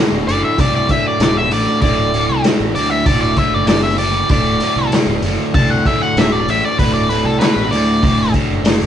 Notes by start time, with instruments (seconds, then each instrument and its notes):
Already playing: overdriven electric guitar D2, tonewheel organ D4 F#4 A4 D5
0.00 overdriven electric guitar B2
0.12 fingered electric bass D1
0.26 fingered electric bass F#1, overdriven electric guitar D2 A2, tonewheel organ D4 F#4 A4 D5, lead electric guitar D5, open hi-hat
0.44 lead electric guitar E5
0.58 fingered electric bass C2, overdriven electric guitar D2 A2, tonewheel organ D4 F#4 A4 D5, lead electric guitar D5, kick, open hi-hat
0.76 lead electric guitar D5
0.89 overdriven electric guitar D2 A2, tonewheel organ D4 F#4 A4 D5, lead electric guitar E5, kick, open hi-hat
1.08 lead electric guitar D5
1.20 fingered electric bass D1, overdriven electric guitar D2 B2, tonewheel organ D4 F#4 A4 D5, lead electric guitar D5, snare, open hi-hat
1.37 lead electric guitar E5
1.51 fingered electric bass A1, overdriven electric guitar D2 A2, tonewheel organ D4 F#4 A4 D5, lead electric guitar D5, open hi-hat
1.82 fingered electric bass D1, overdriven electric guitar D2 A2, tonewheel organ D4 F#4 A4 D5, lead electric guitar D5, kick, open hi-hat
2.12 overdriven electric guitar D2 A2, tonewheel organ D4 F#4 A4 D5, open hi-hat
2.29 fingered electric bass C2
2.43 overdriven electric guitar D2 B2, tonewheel organ D4 F#4 A4 D5, snare, open hi-hat
2.60 fingered electric bass A1
2.74 fingered electric bass D2, overdriven electric guitar D2 A2, tonewheel organ D4 F#4 A4 D5, lead electric guitar D5, open hi-hat
2.90 lead electric guitar E5
3.06 fingered electric bass D1, overdriven electric guitar D2 A2, tonewheel organ D4 F#4 A4 D5, lead electric guitar D5, kick, open hi-hat
3.21 lead electric guitar D5
3.37 overdriven electric guitar D2 A2, tonewheel organ D4 F#4 A4 D5, lead electric guitar E5, kick, open hi-hat
3.52 fingered electric bass F#1, lead electric guitar D5
3.67 overdriven electric guitar D2 B2, tonewheel organ D4 F#4 A4 D5, lead electric guitar D5, snare, open hi-hat
3.83 lead electric guitar E5
3.98 overdriven electric guitar D2 A2, tonewheel organ D4 F#4 A4 D5, lead electric guitar D5, open hi-hat
4.29 fingered electric bass D1, overdriven electric guitar D2 A2, tonewheel organ D4 F#4 A4 D5, lead electric guitar D5, kick, open hi-hat
4.60 overdriven electric guitar D2 A2, tonewheel organ D4 F#4 A4 D5, open hi-hat
4.76 fingered electric bass C2
4.92 overdriven electric guitar D2 B2, tonewheel organ D4 F#4 A4 D5, snare, open hi-hat
5.07 fingered electric bass D1
5.22 fingered electric bass F#1, overdriven electric guitar D2 A2, tonewheel organ D4 F#4 A4 D5, open hi-hat
5.54 fingered electric bass C2, overdriven electric guitar D2 A2, tonewheel organ D4 F#4 A4 D5, lead electric guitar A5, kick, open hi-hat
5.70 lead electric guitar F#5
5.85 overdriven electric guitar D2 A2, tonewheel organ D4 F#4 A4 D5, lead electric guitar E5, kick, open hi-hat
6.02 lead electric guitar F#5
6.16 fingered electric bass D1, overdriven electric guitar D2 B2, tonewheel organ D4 F#4 A4 D5, lead electric guitar E5, snare, open hi-hat
6.32 lead electric guitar D5
6.47 fingered electric bass A1, overdriven electric guitar D2 A2, tonewheel organ D4 F#4 A4 D5, lead electric guitar E5, open hi-hat
6.65 lead electric guitar D5
6.77 fingered electric bass D1, overdriven electric guitar D2, tonewheel organ D4 F#4 A4 D5, lead electric guitar B4, kick, open hi-hat
6.81 overdriven electric guitar A2
6.94 lead electric guitar D5
7.09 overdriven electric guitar D2 A2, tonewheel organ D4 F#4 A4 D5, lead electric guitar B4, open hi-hat
7.24 fingered electric bass C2, lead electric guitar A4
7.39 overdriven electric guitar D2 B2, tonewheel organ D4 F#4 A4 D5, lead electric guitar B4, snare, open hi-hat
7.56 fingered electric bass A1
7.71 fingered electric bass D2, overdriven electric guitar D2 A2, tonewheel organ D4 F#4 A4 C5, lead electric guitar D5, open hi-hat
8.02 fingered electric bass D1, overdriven electric guitar D2 A2, tonewheel organ D4 F#4 A4 D5, kick, open hi-hat
8.34 overdriven electric guitar D2 A2, tonewheel organ D4 F#4 A4 D5, kick, open hi-hat
8.51 fingered electric bass F#1
8.63 overdriven electric guitar D2 B2, tonewheel organ D4 F#4 A4 D5, snare, open hi-hat
8.82 fingered electric bass F#1